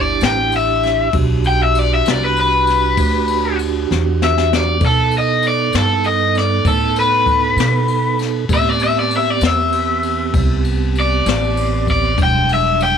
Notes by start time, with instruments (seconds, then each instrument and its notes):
Already playing: upright bass G1, tonewheel organ D4 E4 G4, overdriven electric guitar D5
0.21 upright bass A1, snare, ride
0.25 overdriven electric guitar G5
0.52 ride
0.56 overdriven electric guitar E5
0.83 snare, ride
1.13 upright bass B1, tonewheel organ D4 F#4 G4, kick, ride
1.44 overdriven electric guitar G5, ride
1.63 overdriven electric guitar E5
1.75 overdriven electric guitar D5, ride
1.94 overdriven electric guitar E5
2.05 upright bass C2, snare, ride
2.10 overdriven electric guitar D5
2.24 overdriven electric guitar B4
2.36 overdriven electric guitar B4, ride
2.67 snare, ride
2.97 upright bass D2, kick, ride
3.28 ride
3.59 ride
3.91 upright bass E2, snare
4.22 overdriven electric guitar E5, snare
4.38 snare
4.53 overdriven electric guitar D5, snare
4.80 upright bass B2, tonewheel organ B3 D#4 A4, kick, ride
4.86 overdriven electric guitar A4
5.11 ride
5.18 overdriven electric guitar D#5
5.42 ride
5.48 overdriven electric guitar D5
5.72 upright bass G2, snare, ride
5.78 overdriven electric guitar A4
6.04 overdriven electric guitar D#5, ride
6.35 overdriven electric guitar D5, snare, ride
6.65 upright bass A2, overdriven electric guitar A4, kick, ride
6.96 ride
7.00 overdriven electric guitar B4
7.26 kick, ride
7.56 upright bass B2, snare, ride
7.88 ride
8.19 snare, ride
8.49 upright bass A2, tonewheel organ B3 C4 G4, kick, ride
8.54 overdriven electric guitar E5
8.70 overdriven electric guitar D5
8.79 ride
8.84 overdriven electric guitar E5
9.00 overdriven electric guitar D5
9.11 ride
9.17 overdriven electric guitar E5
9.30 overdriven electric guitar D5
9.41 upright bass E2, snare, ride
9.46 overdriven electric guitar E5
9.72 ride
10.03 ride
10.34 upright bass C2, kick, ride
10.65 ride
10.95 ride
11.00 overdriven electric guitar D5
11.26 upright bass A1, snare, ride
11.57 ride
11.87 overdriven electric guitar D5, kick, ride
12.16 upright bass E1, tonewheel organ F#3 G3 D4, kick, ride
12.23 overdriven electric guitar G5
12.49 ride
12.54 overdriven electric guitar E5
12.80 overdriven electric guitar G5, ride